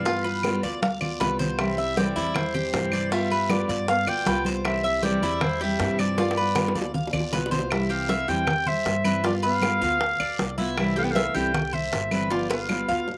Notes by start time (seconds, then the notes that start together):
Already playing: G2 B3 F5
0.05 G3 B3 F4, high bongo, high conga, long guiro
0.24 B3 F4 B4, high bongo, high conga
0.43 G3 B3 F4, high bongo, high conga, short guiro, claves
0.63 D2 B3 F4 D5, high bongo, high conga, short guiro
0.82 F5, muted steel-string acoustic guitar stroke, high bongo, high conga, long guiro
1.01 B3 F4 D5, high bongo, low conga, claves
1.20 C2 G3 B3 F4 B4, high bongo, low bongo, low conga, short guiro
1.39 C5, low conga, short guiro
1.59 C3 E3 G3 C4 E4 E5, high bongo, high conga, long guiro, claves
1.78 G3 C4 E4 E5, high conga
1.97 C3 E3 G3 C4 E4 G4 D5, high bongo, high conga, short guiro
2.16 E2 G3 C4 E4, high conga, short guiro
2.35 E3 C5, muted steel-string acoustic guitar stroke, high bongo, high conga, low conga, long guiro, claves
2.54 G3 C4 E4 G4, high conga, low conga
2.73 G2 C3 E3 G3 C4 E4, high bongo, low bongo, high conga, short guiro
2.92 D5, high conga, short guiro, claves
3.11 G3 B3 F4 E5, high bongo, high conga, long guiro
3.30 B3 F4 B4, high bongo, high conga
3.49 F3 G3 B3 F4 D5, high bongo, high conga, short guiro, claves
3.68 G2 B3 F4 D5, high bongo, high conga, short guiro
3.87 B3 F5, muted steel-string acoustic guitar stroke, high bongo, high conga, long guiro
4.06 D2 B3 F4 D5 G5, high bongo, high conga, claves
4.26 C2 G3 B3 F4 B4, high bongo, low bongo, high conga, short guiro
4.45 C5, high conga, short guiro
4.64 C3 E3 G3 C4 E4 E5, high bongo, high conga, long guiro, claves
4.83 G3 C4 E4 E5, high conga
5.01 C3 E3 G3 C4 E4 G4 D5, high bongo, high conga, short guiro
5.22 E2 G3 C4 E4, high conga, short guiro
5.41 E3 C5, muted steel-string acoustic guitar stroke, high bongo, high conga, low conga, long guiro, claves
5.61 G3 C4 E4 G4 E5, high conga
5.80 G2 C3 E3 G3 C4 E4, high bongo, low bongo, high conga, short guiro
5.99 F3 D5, high conga, short guiro, claves
6.18 G3 B3 F4, high bongo, high conga, long guiro
6.31 high bongo
6.37 B3 F4 B4
6.56 G3 B3 F4, high bongo, low conga, short guiro, claves
6.68 high bongo
6.75 D2 B3 F4 D5, high conga, short guiro
6.81 low bongo
6.94 F5, muted steel-string acoustic guitar stroke, low conga, long guiro
7.07 low bongo
7.13 D2 B3 F4 D5, low conga, claves
7.20 low bongo
7.33 C2 G3 B3 F4 B4, low bongo, low conga, short guiro
7.46 low bongo
7.51 C5, low conga, short guiro
7.59 low bongo
7.71 C3 E3 G3 C4 E4 E5, high bongo, high conga, long guiro, claves
7.90 C4 G4 F5, high conga
8.09 E3 G3 C4 E4 E5, high bongo, high conga, short guiro
8.28 E2 E3 G3 C4 E4 G4 G5, high conga, short guiro
8.47 muted steel-string acoustic guitar stroke, high bongo, high conga, low conga, long guiro, claves
8.66 G3 C5 E5, high conga, low conga
8.85 G2, high bongo, low bongo, high conga, short guiro
9.04 E3 G3 C4 E4 B4, high conga, short guiro, claves
9.23 F3 G3 B3 F4 D5, high bongo, high conga, long guiro
9.43 B3 B4 F5, high bongo, high conga
9.62 G3 B3 F4, high bongo, high conga, short guiro, claves
9.81 D2 B3 F4 F5, high bongo, high conga, short guiro
10.00 muted steel-string acoustic guitar stroke, high bongo, high conga, long guiro
10.20 D2 D5, high bongo, high conga, claves
10.39 C2, high bongo, low bongo, high conga, short guiro
10.58 B3 E4 F4, high conga, short guiro
10.77 C3 E3 G3 C4 E4 E5, high bongo, high conga, long guiro, claves
10.96 A3 G4 F5, high conga
11.04 B3 G5
11.11 E3 A3 F5
11.15 G3 C4 E4 E5, high bongo, high conga, short guiro
11.34 C2 E3 G3 C4 E4 G4 G5, high conga, short guiro
11.54 muted steel-string acoustic guitar stroke, high bongo, high conga, low conga, long guiro, claves
11.73 G3 C5 E5, high conga, low conga
11.93 G1, high bongo, low bongo, high conga, short guiro
12.11 E3 G3 C4 E4 B4, high conga, short guiro, claves
12.30 F3 G3 B3 F4 D5, high bongo, high conga, long guiro
12.50 B3 B4 F5, high bongo, high conga
12.69 G3 B3 F4, low bongo, high conga, short guiro, claves
12.89 D2 B3 F4 F5, high conga, short guiro
13.08 muted steel-string acoustic guitar stroke, low bongo, high conga, long guiro